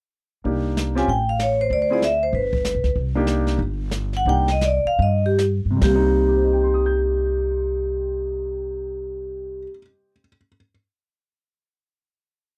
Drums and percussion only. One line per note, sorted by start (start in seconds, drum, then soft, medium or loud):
0.45 brush sweep soft
0.45 kick soft
0.77 snare soft
0.77 hi-hat pedal medium
0.97 snare soft
1.08 brush sweep soft
1.08 kick soft
1.39 snare medium
1.39 hi-hat pedal soft
1.71 brush sweep soft
1.71 kick soft
2.02 snare medium
2.02 hi-hat pedal medium
2.33 brush sweep soft
2.33 kick soft
2.53 kick medium
2.65 snare medium
2.65 hi-hat pedal medium
2.84 snare soft
2.95 brush sweep soft
2.95 kick soft
3.27 snare medium
3.27 hi-hat pedal soft
3.47 snare soft
3.59 brush sweep soft
3.59 kick soft
3.91 snare medium
3.91 hi-hat pedal medium
4.13 snare soft
4.25 brush sweep soft
4.25 kick soft
4.48 snare soft
4.61 snare medium
4.61 hi-hat pedal medium
4.99 brush sweep soft
4.99 kick soft
5.38 snare medium
5.38 hi-hat pedal medium
5.82 kick medium
5.82 snare medium
5.82 open hi-hat medium